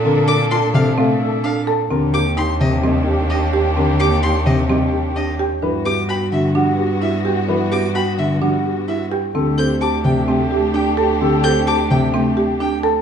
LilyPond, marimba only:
\new Staff \with { instrumentName = "Marimba" } { \time 4/4 \key g \major \tempo 4 = 129 c'8 a'8 f'8 r8 c'8 r8 d'8 a'8 | c'8 g'8 ees'8 r8 c'8 r8 d'8 g'8 | c'8 g'8 ees'8 r8 c'8 r8 d'8 g'8 | d'8 g'8 fis'8 r8 d'8 r8 e'8 g'8 |
d'8 g'8 fis'8 r8 d'8 r8 e'8 g'8 | c'8 a'8 g'8 r8 c'8 g'8 d'8 a'8 | c'8 a'8 g'8 r8 c'8 g'8 d'8 a'8 | }